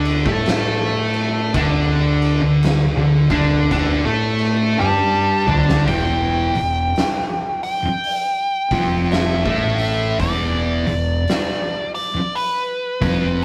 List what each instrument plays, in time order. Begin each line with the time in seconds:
Already playing: fingered electric bass D2, distorted electric guitar D3 D4
0.05 crash
0.26 fingered electric bass A2, distorted electric guitar A3 A4, kick
0.46 snare, crash
1.14 crash
1.54 fingered electric bass D2, distorted electric guitar D3 D4, kick, crash
2.22 crash
2.42 fingered electric bass D2, distorted electric guitar D3
2.63 snare, crash
2.96 fingered electric bass D2, distorted electric guitar D3
3.30 fingered electric bass D2, distorted electric guitar D3 D4, kick, crash
3.71 fingered electric bass D2, distorted electric guitar D3 D4, kick, crash
4.04 fingered electric bass A2, distorted electric guitar A3 A4
4.38 crash
4.79 fingered electric bass G2, distorted electric guitar G3 G4, lead electric guitar A5, high tom
5.47 fingered electric bass D2, distorted electric guitar D3 D4, mid tom
5.69 snare
5.88 fingered electric bass E1, distorted electric guitar E2 E3, lead electric guitar G5, kick, open hi-hat
6.55 fingered electric bass E1, distorted electric guitar E2, open hi-hat
6.96 snare, open hi-hat
7.63 lead electric guitar G5, open hi-hat
7.84 muted fingered electric bass stroke, muted distorted electric guitar stroke
8.04 open hi-hat
8.71 fingered electric bass F1, distorted electric guitar F2 F3, kick, open hi-hat
9.11 lead electric guitar E5, snare, open hi-hat
9.46 fingered electric bass A1, distorted electric guitar A2 A3, kick
9.79 open hi-hat
10.20 fingered electric bass E1, distorted electric guitar E2 E3, lead electric guitar D5, kick, open hi-hat
10.86 fingered electric bass E1, distorted electric guitar E2, open hi-hat
11.28 snare, open hi-hat
11.95 lead electric guitar D5, open hi-hat
12.14 muted fingered electric bass stroke, muted distorted electric guitar stroke
12.35 lead electric guitar B4, open hi-hat
13.01 fingered electric bass F1, distorted electric guitar F2 F3, kick, open hi-hat